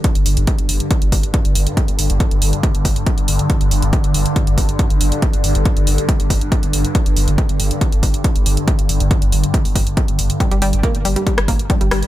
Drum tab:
HH |xxoxxxoxxxoxxxox|xxoxxxoxxxoxxxox|xxoxxxoxxxoxxxox|xxoxxxoxxxoxxxox|
SD |----------------|----------------|----------------|----------------|
BD |o---o---o-o-o---|o---o---o-o-o---|o---o---o-o-o---|o---o---o-o-o---|

HH |xxoxxxoxxxoxxxox|xxoxxxoxxooxxxox|xxoxxxoxxxoxxxox|
SD |----------------|----------------|---------r----r-|
BD |o---o---o-o-o---|o---o---o-o-o---|o---o---o-o-o---|